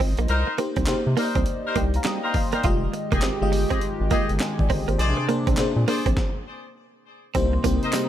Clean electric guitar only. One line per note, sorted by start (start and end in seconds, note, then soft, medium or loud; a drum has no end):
0.00 0.12 C4 medium
0.19 0.26 A#3 medium
0.47 muted clean electric guitar stroke soft
0.58 0.71 A#3 medium
0.77 0.84 C4 medium
0.88 muted clean electric guitar stroke soft
1.17 1.29 A#3 medium
1.36 1.43 C4 medium
1.76 1.88 A#3 medium
2.05 2.18 G3 medium
2.35 muted clean electric guitar stroke soft
2.53 2.60 A#3 medium
2.64 2.77 F4 medium
2.93 muted clean electric guitar stroke soft
3.12 3.19 A#3 medium
3.22 3.35 C4 medium
3.52 muted clean electric guitar stroke soft
3.70 3.78 C4 medium
4.11 4.23 A#3 medium
4.40 muted clean electric guitar stroke soft
4.70 4.82 C4 medium
4.88 4.95 A#3 medium
5.17 muted clean electric guitar stroke soft
5.29 5.41 A#3 medium
5.47 5.54 C4 medium
5.58 muted clean electric guitar stroke soft
5.88 6.00 A#3 medium
6.06 6.13 C4 medium
7.35 7.47 C4 medium
7.53 muted clean electric guitar stroke soft
7.64 7.76 A#3 medium
7.93 8.06 G3 medium